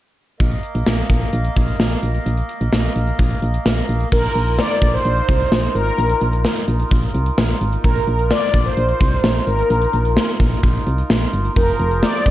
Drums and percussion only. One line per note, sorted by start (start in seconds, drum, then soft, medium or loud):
0.40 kick loud
0.40 closed hi-hat medium
0.51 closed hi-hat soft
0.63 closed hi-hat medium
0.75 closed hi-hat soft
0.86 snare loud
0.98 closed hi-hat soft
1.10 kick medium
1.10 closed hi-hat medium
1.21 closed hi-hat soft
1.33 closed hi-hat medium
1.45 closed hi-hat soft
1.56 kick medium
1.56 closed hi-hat medium
1.68 closed hi-hat medium
1.80 snare loud
1.91 closed hi-hat soft
2.03 closed hi-hat medium
2.15 closed hi-hat soft
2.26 closed hi-hat medium
2.38 closed hi-hat soft
2.49 closed hi-hat medium
2.61 closed hi-hat medium
2.73 snare loud
2.84 closed hi-hat soft
2.96 closed hi-hat medium
3.08 closed hi-hat soft
3.19 kick medium
3.19 closed hi-hat medium
3.31 closed hi-hat soft
3.42 closed hi-hat medium
3.54 closed hi-hat medium
3.66 snare loud
3.77 closed hi-hat soft
3.89 closed hi-hat medium
4.01 closed hi-hat soft
4.12 kick loud
4.12 crash medium
4.24 closed hi-hat medium
4.35 closed hi-hat medium
4.47 closed hi-hat medium
4.59 snare loud
4.70 closed hi-hat soft
4.82 kick medium
4.82 closed hi-hat medium
4.94 closed hi-hat soft
5.05 closed hi-hat medium
5.17 closed hi-hat soft
5.28 kick medium
5.28 closed hi-hat medium
5.40 closed hi-hat medium
5.52 snare loud
5.63 closed hi-hat soft
5.75 closed hi-hat medium
5.87 closed hi-hat soft
5.98 closed hi-hat medium
6.10 closed hi-hat medium
6.21 closed hi-hat medium
6.33 closed hi-hat medium
6.45 snare loud
6.56 closed hi-hat soft
6.68 closed hi-hat medium
6.80 closed hi-hat soft
6.91 kick medium
6.91 closed hi-hat medium
7.03 closed hi-hat medium
7.14 closed hi-hat medium
7.26 closed hi-hat medium
7.38 snare loud
7.49 closed hi-hat soft
7.61 closed hi-hat medium
7.73 closed hi-hat soft
7.84 kick loud
7.84 closed hi-hat medium
7.96 closed hi-hat medium
8.07 closed hi-hat medium
8.19 closed hi-hat medium
8.31 snare loud
8.42 closed hi-hat soft
8.54 kick medium
8.54 closed hi-hat medium
8.66 closed hi-hat soft
8.77 closed hi-hat medium
8.89 closed hi-hat medium
9.00 kick medium
9.00 closed hi-hat medium
9.12 closed hi-hat medium
9.24 snare loud
9.35 closed hi-hat medium
9.47 closed hi-hat medium
9.59 closed hi-hat soft
9.70 closed hi-hat medium
9.82 closed hi-hat medium
9.93 closed hi-hat medium
10.05 closed hi-hat medium
10.17 snare loud
10.28 closed hi-hat soft
10.40 kick medium
10.40 closed hi-hat medium
10.52 closed hi-hat soft
10.63 kick loud
10.63 closed hi-hat medium
10.75 closed hi-hat medium
10.87 closed hi-hat medium
10.98 closed hi-hat medium
11.10 snare loud
11.21 closed hi-hat medium
11.33 closed hi-hat medium
11.45 closed hi-hat soft
11.56 kick loud
11.56 closed hi-hat medium
11.68 closed hi-hat medium
11.79 closed hi-hat medium
11.91 closed hi-hat medium
12.03 snare loud
12.14 closed hi-hat soft
12.26 kick medium
12.26 closed hi-hat medium